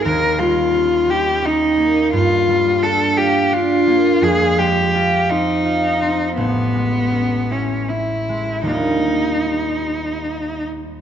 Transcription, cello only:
0.05 0.41 A#4 medium
0.39 1.12 F4 medium
1.10 1.47 G4 medium
1.45 2.14 D#4 medium
2.14 2.85 F4 medium
2.84 3.19 A4 medium
3.17 3.55 G4 soft
3.54 4.25 F4 medium
4.23 4.60 G#4 medium
4.58 5.31 G4 soft
5.30 6.37 D#4 soft
6.37 7.53 B3 medium
7.52 7.90 C#4 soft
7.89 8.68 E4 soft
8.69 10.64 D#4 soft

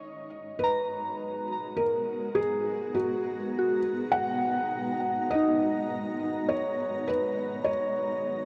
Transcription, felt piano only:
0.00 0.63 D#5 medium
0.59 1.81 B4 medium
1.77 2.38 A#4 medium
2.35 2.96 G#4 medium
2.95 3.79 F#4 medium
4.12 5.33 F#5 medium
5.31 6.52 D#5 medium
6.49 7.09 C#5 medium
7.08 7.68 B4 medium
7.64 8.45 C#5 medium

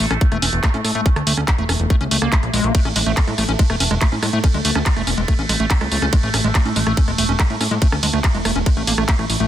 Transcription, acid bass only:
0.00 0.06 A3 medium
0.11 0.14 C#4 medium
0.32 0.37 A3 medium
0.42 0.46 C#4 medium
0.63 0.69 A3 medium
0.74 0.77 C#4 medium
0.95 1.01 A3 medium
1.06 1.09 C#4 medium
1.27 1.33 A3 medium
1.37 1.41 C#4 medium
1.58 1.64 A3 medium
1.69 1.73 C#4 medium
1.90 1.96 A3 medium
2.01 2.04 C#4 medium
2.11 2.17 A3 medium
2.22 2.34 A#3 medium
2.32 2.38 A3 loud
2.54 2.66 G#3 medium
2.64 2.73 A#3 loud
2.75 2.80 A3 medium
2.85 2.89 C#4 medium
2.96 2.99 G#3 loud
3.06 3.12 A3 medium
3.17 3.20 C#4 medium
3.27 3.31 G#3 loud
3.38 3.44 A3 medium
3.49 3.52 C#4 medium
3.59 3.63 G#3 loud
3.70 3.76 A3 medium
3.80 3.84 C#4 medium
3.91 3.94 G#3 loud
4.01 4.07 A3 medium
4.12 4.15 C#4 medium
4.23 4.26 G#3 loud
4.33 4.39 A3 medium
4.44 4.47 C#4 medium
4.54 4.58 G#3 loud
4.65 4.71 A3 medium
4.75 4.79 C#4 medium
4.86 4.89 G#3 loud
4.97 5.02 A3 medium
5.07 5.11 C#4 medium
5.18 5.21 G#3 loud
5.28 5.34 A3 medium
5.39 5.42 C#4 medium
5.49 5.53 G#3 loud
5.60 5.66 A3 medium
5.70 5.74 C#4 medium
5.81 5.84 G#3 loud
5.92 5.97 A3 medium
6.02 6.06 C#4 medium
6.13 6.16 G#3 loud
6.23 6.29 A3 medium
6.34 6.37 C#4 medium
6.44 6.48 G#3 loud
6.55 6.61 A3 medium
6.66 6.69 C#4 medium
6.76 6.80 G#3 loud
6.87 6.92 A3 medium
6.97 7.01 C#4 medium
7.08 7.11 G#3 loud
7.18 7.24 A3 medium
7.29 7.32 C#4 medium
7.39 7.43 G#3 loud
7.50 7.56 A3 medium
7.61 7.64 C#4 medium
7.71 7.75 G#3 loud
7.82 7.88 A3 medium
7.92 7.96 C#4 medium
8.03 8.06 G#3 loud
8.14 8.19 A3 medium
8.24 8.27 C#4 medium
8.35 8.38 G#3 loud
8.45 8.51 A3 medium
8.56 8.59 C#4 medium
8.66 8.70 G#3 loud
8.77 8.83 A3 medium
8.87 8.93 A#3 medium
8.98 9.04 A3 medium
9.09 9.14 A3 loud
9.19 9.25 A3 medium
9.40 9.46 A3 medium

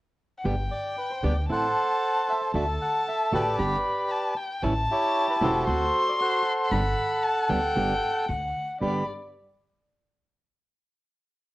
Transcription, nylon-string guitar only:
0.44 0.54 D3 medium
0.44 0.54 G3 medium
0.44 0.54 B3 medium
0.44 0.54 D4 medium
0.44 0.54 G4 medium
1.23 1.32 D3 medium
1.23 1.33 G3 medium
1.23 1.33 B3 medium
1.23 1.33 D4 medium
1.23 1.33 G4 medium
1.49 1.66 E3 soft
1.49 1.67 A3 medium
1.49 1.67 C4 medium
1.49 1.67 E4 medium
2.54 2.63 D3 medium
2.54 2.64 A3 medium
2.54 2.64 D4 medium
2.54 2.64 F#4 medium
3.32 3.41 D3 medium
3.32 3.42 A3 medium
3.32 3.42 D4 medium
3.32 3.42 F#4 medium
3.58 3.76 D3 medium
3.58 3.76 G3 medium
3.58 3.76 B3 medium
3.58 3.76 D4 medium
3.58 3.76 G4 medium
4.62 4.72 E3 medium
4.62 4.72 G3 medium
4.62 4.72 C#4 medium
4.62 4.73 E4 medium
5.41 5.50 E3 medium
5.41 5.50 G3 medium
5.41 5.51 C#4 medium
5.41 5.51 E4 medium
5.68 5.85 D3 medium
5.68 5.84 A3 medium
5.68 5.85 C4 medium
5.68 5.85 F#4 medium
6.71 6.80 D3 medium
6.71 6.81 G3 medium
6.71 6.81 B3 medium
6.71 6.81 D4 medium
6.71 6.81 G4 medium
7.49 7.58 D3 medium
7.49 7.59 G3 medium
7.49 7.59 B3 medium
7.49 7.59 D4 medium
7.49 7.59 G4 medium
7.76 7.93 D3 medium
7.76 7.93 G3 medium
7.76 7.93 B3 medium
7.76 7.93 D4 medium
7.76 7.94 G4 medium
8.80 9.02 G2 medium
8.80 9.02 D3 medium
8.80 9.02 G3 medium
8.80 9.02 B3 medium
8.80 9.03 D4 medium
8.80 9.03 G4 medium

